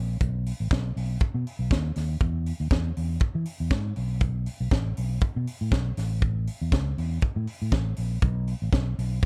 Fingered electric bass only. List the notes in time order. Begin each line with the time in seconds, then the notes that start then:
Already playing: A#1
0.21 B1
0.60 A1
0.71 B1
0.96 B1
1.21 muted fingered electric bass stroke
1.34 B2
1.59 B1
1.71 D#2
1.96 D#2
2.21 E2
2.60 D#2
2.71 E2
2.97 E2
3.21 muted fingered electric bass stroke
3.35 E3
3.60 E2
3.72 G#2
3.97 B1
4.60 B1
4.72 A1
4.98 B1
5.22 muted fingered electric bass stroke
5.36 B2
5.61 A2
5.72 B1
5.98 A1
6.61 E2
6.73 C#2
6.98 E2
7.23 muted fingered electric bass stroke
7.36 A2
7.62 A2
7.72 A1
7.98 A#1
8.23 B1
8.62 A1
8.73 B1
8.98 B1